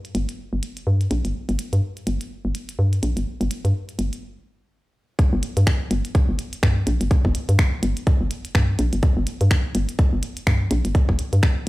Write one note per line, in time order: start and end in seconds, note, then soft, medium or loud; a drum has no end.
0.05 closed hi-hat soft
0.15 0.27 G1 medium
0.15 closed hi-hat medium
0.29 closed hi-hat soft
0.53 0.61 G1 medium
0.63 closed hi-hat medium
0.77 closed hi-hat soft
0.87 1.08 G2 medium
1.01 closed hi-hat soft
1.11 1.23 A#1 medium
1.11 closed hi-hat medium
1.25 1.33 G1 medium
1.25 closed hi-hat soft
1.49 1.57 G1 medium
1.49 closed hi-hat soft
1.59 closed hi-hat medium
1.73 1.81 G2 medium
1.73 closed hi-hat soft
1.97 closed hi-hat soft
2.07 2.19 G1 medium
2.07 closed hi-hat medium
2.21 closed hi-hat soft
2.45 2.53 G1 medium
2.55 closed hi-hat medium
2.69 closed hi-hat soft
2.79 3.00 G2 medium
2.93 closed hi-hat soft
3.03 3.15 A#1 medium
3.03 closed hi-hat medium
3.17 3.25 G1 medium
3.17 closed hi-hat soft
3.41 3.49 G1 loud
3.41 closed hi-hat soft
3.51 closed hi-hat medium
3.65 3.73 G2 medium
3.65 closed hi-hat soft
3.89 closed hi-hat soft
3.99 4.10 G1 medium
3.99 closed hi-hat medium
4.13 closed hi-hat soft
5.19 kick loud
5.19 closed hi-hat soft
5.33 5.41 G1 loud
5.43 closed hi-hat medium
5.57 5.65 G2 medium
5.57 closed hi-hat medium
5.67 finger snap medium
5.67 kick loud
5.67 closed hi-hat soft
5.91 6.03 G1 loud
5.91 closed hi-hat loud
6.05 closed hi-hat medium
6.15 kick loud
6.15 closed hi-hat soft
6.29 6.37 G1 medium
6.39 closed hi-hat medium
6.53 closed hi-hat medium
6.63 6.84 G2 medium
6.63 finger snap loud
6.63 kick loud
6.63 closed hi-hat soft
6.87 6.99 A#1 medium
6.87 closed hi-hat loud
7.01 7.09 G1 medium
7.01 closed hi-hat medium
7.11 kick loud
7.11 closed hi-hat soft
7.25 7.33 G1 loud
7.25 kick medium
7.35 closed hi-hat loud
7.49 7.57 G2 medium
7.49 closed hi-hat medium
7.59 finger snap loud
7.59 kick loud
7.59 closed hi-hat soft
7.83 7.94 G1 medium
7.83 closed hi-hat medium
7.97 closed hi-hat medium
8.07 kick loud
8.07 closed hi-hat soft
8.21 8.29 G1 medium
8.31 closed hi-hat loud
8.45 closed hi-hat medium
8.55 8.76 G2 medium
8.55 finger snap loud
8.55 kick loud
8.55 closed hi-hat soft
8.79 8.91 A#1 loud
8.79 closed hi-hat loud
8.93 9.01 G1 medium
8.93 closed hi-hat medium
9.03 kick loud
9.03 closed hi-hat soft
9.17 9.25 G1 loud
9.27 closed hi-hat loud
9.41 9.49 G2 medium
9.41 closed hi-hat soft
9.51 finger snap medium
9.51 kick loud
9.51 closed hi-hat soft
9.75 9.87 G1 medium
9.75 closed hi-hat loud
9.89 closed hi-hat medium
9.99 kick loud
9.99 closed hi-hat soft
10.13 10.21 G1 medium
10.23 closed hi-hat loud
10.37 closed hi-hat medium
10.47 10.68 G2 medium
10.47 finger snap loud
10.47 kick loud
10.47 closed hi-hat soft
10.71 10.83 A#1 loud
10.71 closed hi-hat loud
10.85 10.93 G1 medium
10.85 closed hi-hat medium
10.95 kick loud
10.95 closed hi-hat soft
11.09 11.17 G1 loud
11.09 kick medium
11.19 closed hi-hat loud
11.33 11.41 G2 medium
11.33 closed hi-hat soft
11.43 finger snap medium
11.43 kick loud
11.43 closed hi-hat soft